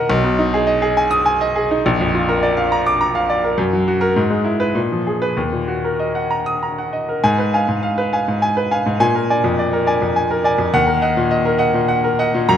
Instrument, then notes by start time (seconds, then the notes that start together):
grand piano
Already playing: D#2 A#2 D#4 A#4 D#5 F#5 A#5 F#6
0.10 B1
0.24 B2
0.39 D#4
0.54 G#4
0.67 D#5
0.82 G#4
0.97 G#5
1.11 D#6
1.26 G#5
1.41 D#5
1.56 G#4
1.71 D#4
1.86 A#1
2.01 F2
2.15 F4
2.29 A#4
2.43 D5
2.57 F5
2.72 A#5
2.86 D6
3.01 A#5
3.15 F5
3.30 D5
3.44 A#4
3.58 F#2
3.73 F#3
3.88 F#4
4.01 A#4
4.16 G#2
4.30 G#3
4.45 E4
4.60 B4
4.75 A#2
4.92 F3
5.07 G#4
5.22 B4
5.37 D#2
5.53 A#2
5.68 F#4
5.84 A#4
6.00 D#5
6.15 F#5
6.31 A#5
6.46 D#6
6.63 A#5
6.78 F#5
6.93 D#5
7.09 A#4
7.24 G#2 G#5
7.38 B4
7.54 F5 G#5
7.68 G#2
7.83 F5
7.98 B4
8.13 F5 G#5
8.28 G#2
8.42 G#5
8.57 B4
8.71 F5 G#5
8.86 G#2
9.00 A#2 G#5
9.15 A#4
9.30 D5 G#5
9.44 F2
9.59 D5
9.73 A#4
9.87 D5 G#5
10.02 F2
10.16 G#5
10.31 A#4
10.44 D5 G#5
10.58 F2
10.74 D#2 F#5
10.87 A#4
11.02 D#5 F#5
11.17 A#2
11.31 D#5
11.45 A#4
11.58 D#5 F#5
11.74 A#2
11.88 F#5
12.04 A#4
12.19 D#5 F#5
12.34 A#2
12.49 F#2 A#5